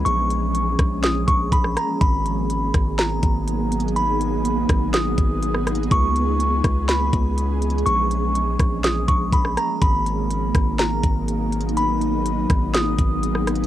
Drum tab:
HH |x-----x-----x-----x-----x-----x-----x-----x-----|x-----x-----x-----x-----x-----x-----x-----x-x-x-|x-----x-----x-----x-----x-----x-----x-----x-x-x-|x-----x-----x-----x-----x-----x-----x-----x-x-x-|
SD |------------------r-----o--------------r--r-----|------------------r-----o-----------------------|------------------r-----o--------------r--r-----|------------------r-----o-----------------------|
BD |------------------o-----------o-----o-----------|o-----------------o-----------o-----------------|------------------o-----------o-----------------|o-----------------o-----------o-----------------|

HH |x-----x-----x-----x-----x-----x-----x-----x-----|x-----x-----x-----x-----x-----x-----x-----x-x-x-|x-----x-----x-----x-----x-----x-----x-----x-x-x-|
SD |------------------r-----o--------------r--r-----|------------------r-----o-----------------------|------------------r-----o--------------r--r-----|
BD |------------------o-----------o-----o-----------|o-----------------o-----------o-----------------|------------------o-----------o-----------------|